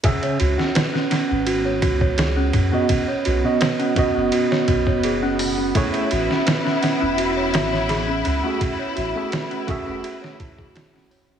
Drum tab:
RD |xxx-x-x-x-x-x-x-|x-x-xxx-x-x-x---|xxx-x-x-x-x-x-x-|x-x-xxx-x-x-x---|
HH |----------------|--------------o-|----------------|--------------o-|
SD |---oooo-----o---|----o----o------|---oooo---ooo---|----o----o--oo--|
BD |o---------oo--o-|o-----o---oo----|o---------------|o-----o---oo----|